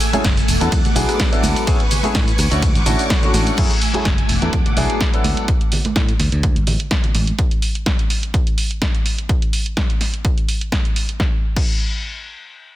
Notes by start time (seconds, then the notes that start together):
Already playing: A3 G#5 E6
0.00 open hi-hat, tambourine, cabasa
0.13 F#3 A3 C#4 E4 G#4, muted fingered electric bass stroke, closed hi-hat, tambourine, high conga, cabasa
0.24 F#1, kick, snare, closed hi-hat, ride, tambourine, cabasa
0.37 closed hi-hat, cabasa
0.48 E1 F#5 D6, open hi-hat, tambourine, cabasa
0.60 E2 F#3 B3 D4 E4 A4, closed hi-hat, tambourine, cabasa
0.72 E2, kick, closed hi-hat, ride, tambourine, high conga, cabasa
0.85 closed hi-hat, low conga, cabasa
0.95 B1 F#3 B3 D4 E4 G#4, open hi-hat, tambourine, cabasa
1.09 cross-stick, closed hi-hat, tambourine, cabasa
1.20 kick, snare, closed hi-hat, ride, cabasa
1.32 F#3 B3 D4 E4 A4, closed hi-hat, cabasa
1.43 D2, open hi-hat, tambourine, high conga, cabasa
1.56 closed hi-hat, tambourine, cabasa
1.67 A3 B3 C#4 E4 G#4 B4 G#5 C#6, kick, closed hi-hat, ride, tambourine, cabasa
1.80 closed hi-hat
1.91 open hi-hat, tambourine, low conga, cabasa
2.03 A3 B3 C#4 E4 G#4, muted fingered electric bass stroke, closed hi-hat, tambourine, high conga, cabasa
2.14 A2, kick, snare, closed hi-hat, ride, tambourine, cabasa
2.28 closed hi-hat, cabasa
2.38 D2 F#5 C#6 D6, cross-stick, open hi-hat, tambourine, cabasa
2.51 D2 A3 C#4 D4 E4 F#4, closed hi-hat, tambourine, cabasa
2.62 kick, closed hi-hat, ride, tambourine, high conga, cabasa
2.75 A1, closed hi-hat, cabasa
2.86 A1 A3 C#4 D4 E4 F#4, open hi-hat, tambourine, low conga, cabasa
2.99 closed hi-hat, tambourine, cabasa
3.10 kick, snare, closed hi-hat, ride, cabasa
3.23 A3 C#4 D4 E4 F#4, closed hi-hat, low conga, cabasa
3.34 A1, cross-stick, open hi-hat, tambourine, high conga, cabasa
3.46 closed hi-hat, tambourine, cabasa
3.57 F#2 F#3 A3 C#4 E4 G#4 G#5 E6, kick, closed hi-hat, crash, tambourine
3.71 closed hi-hat
3.81 open hi-hat, tambourine
3.94 F#3 A3 C#4 E4 G#4, muted fingered electric bass stroke, closed hi-hat, tambourine, high conga
4.05 F#1, kick, snare, closed hi-hat
4.18 closed hi-hat
4.29 E1 F#5 D6, open hi-hat, tambourine
4.42 E2 F#3 B3 D4 E4 A4, closed hi-hat, tambourine
4.53 kick, closed hi-hat, tambourine, high conga
4.66 closed hi-hat, low conga
4.77 B1 F#3 B3 D4 E4 G#4, open hi-hat, tambourine
4.90 closed hi-hat, tambourine
5.01 kick, snare, closed hi-hat
5.13 F#3 B3 D4 E4 A4, closed hi-hat
5.24 D2, open hi-hat, tambourine, high conga
5.37 closed hi-hat, tambourine
5.48 kick, closed hi-hat, tambourine
5.61 closed hi-hat
5.72 open hi-hat, tambourine, low conga
5.85 muted fingered electric bass stroke, closed hi-hat, tambourine, high conga
5.96 A2, kick, snare, closed hi-hat
6.09 closed hi-hat
6.19 D2, snare, open hi-hat, tambourine
6.32 D2, closed hi-hat, tambourine
6.43 kick, closed hi-hat, tambourine, high conga
6.56 A1, closed hi-hat
6.67 A1, open hi-hat, tambourine, low conga
6.80 closed hi-hat, tambourine
6.91 kick, snare, closed hi-hat
7.04 closed hi-hat, low conga
7.14 A1, open hi-hat, tambourine, high conga
7.27 closed hi-hat, tambourine
7.39 kick, closed hi-hat
7.51 closed hi-hat
7.62 open hi-hat
7.75 closed hi-hat
7.86 kick, snare, closed hi-hat
7.99 closed hi-hat
8.10 open hi-hat
8.23 closed hi-hat
8.34 kick, closed hi-hat
8.47 closed hi-hat
8.58 open hi-hat
8.71 closed hi-hat
8.82 kick, snare, closed hi-hat
8.95 closed hi-hat
9.06 open hi-hat
9.18 closed hi-hat
9.29 kick, closed hi-hat
9.42 closed hi-hat
9.53 open hi-hat
9.66 closed hi-hat
9.77 kick, snare, closed hi-hat
9.90 closed hi-hat
10.01 snare, open hi-hat
10.14 closed hi-hat
10.25 kick, closed hi-hat
10.38 closed hi-hat
10.49 open hi-hat
10.61 closed hi-hat
10.72 kick, snare, closed hi-hat
10.85 closed hi-hat
10.96 open hi-hat
11.09 closed hi-hat
11.20 kick, snare
11.56 kick, crash